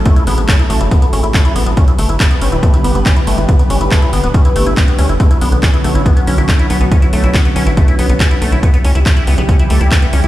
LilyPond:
<<
  \new Staff \with { instrumentName = "Acid bass" } { \time 4/4 \key b \minor \tempo 4 = 140 a16 e'16 b16 b16 cis'16 e'16 a16 e'16 b16 b16 cis'16 e'16 a16 e'16 b16 b16 | cis'16 e'16 a16 e'16 b16 b16 cis'16 e'16 a16 e'16 b16 b16 cis'16 e'16 a16 e'16 | b16 b16 cis'16 e'16 a16 e'16 b16 b16 cis'16 e'16 a16 e'16 b16 b16 cis'16 e'16 | a16 e'16 b16 b16 cis'16 e'16 a16 e'16 b16 b16 cis'16 e'16 a16 e'16 b16 b16 |
cis'16 e'16 a16 e'16 b16 b16 cis'16 e'16 a16 e'16 b16 b16 cis'16 e'16 a16 e'16 | b16 b16 cis'16 e'16 a16 e'16 b16 b16 cis'16 e'16 a16 e'16 b16 b16 cis'16 e'16 | }
  \new Staff \with { instrumentName = "Analog synth pad" } { \time 4/4 \key b \minor << { <fis e' a'>1 | <g g' b'>1~ | <g g' b'>1 | <fis cis' fis'>1~ |
<fis cis' fis'>1 | <e e' g'>1 | } \\ { <cis a>1 | <d b>1~ | <d b>1~ | <d b>1~ |
<d b>1 | <cis g>1 | } >> }
  \new Staff \with { instrumentName = "Analog synth bass" } { \clef bass \time 4/4 \key b \minor r8 a,,16 a,,16 r8 a,,16 fis,,16 r8 a,,16 a,,16 r8 a,,16 a,,16 | r8 g,,16 g,,16 r8 g,,16 d,,16 r8 g,,16 g,,16 r8 g,,16 g,,16 | r8 g,,16 g,,16 r8 g,,16 d,,16 r8 g,,16 g,,16 r8 d,16 g,,16 | r8 b,,16 b,,16 r8 b,,16 a,,16 r8 b,,16 b,,16 r8 b,,16 b,,16 |
r8 b,,16 b,,16 r8 b,,16 a,,16 r8 b,,16 b,,16 r8 b,,16 b,,16 | r8 cis,16 cis,16 r8 cis,16 b,,16 r8 cis,16 cis,16 r8 cis,16 cis,16 | }
  \new DrumStaff \with { instrumentName = "Drums" } \drummode { \time 4/4 <hh bd>16 hh16 hho16 hh16 <hc hh bd>16 hh16 hho16 hh16 <hh bd>16 hh16 hho16 hh16 <hc hh bd>16 hh16 hho16 hh16 | <hh bd>16 hh16 hho16 hh16 <hc hh bd>16 hh16 hho16 hh16 <hh bd>16 hh16 hho16 hh16 <hc hh bd>16 hh16 hho16 hh16 | <hh bd>16 hh16 hho16 hh16 <hc hh bd>16 hh16 hho16 hh16 <hh bd>16 hh16 hho16 hh16 <hc hh bd>16 hh16 hho16 hh16 | <hh bd>16 hh16 hho16 hh16 <hc hh bd>16 hh16 hho16 hh16 <hh bd>16 hh16 hho16 hh16 <hc hh bd>16 hh16 hho16 hh16 |
<hh bd>16 hh16 hho16 hh16 <hc hh bd>16 hh16 hho16 hh16 <hh bd>16 hh16 hho16 hh16 <hc hh bd>16 hh16 hho16 hh16 | <hh bd>16 hh16 hho16 hh16 <hc hh bd>16 hh16 hho16 hh16 <hh bd>16 hh16 hho16 hh16 <hc hh bd>16 hh16 hho16 hh16 | }
>>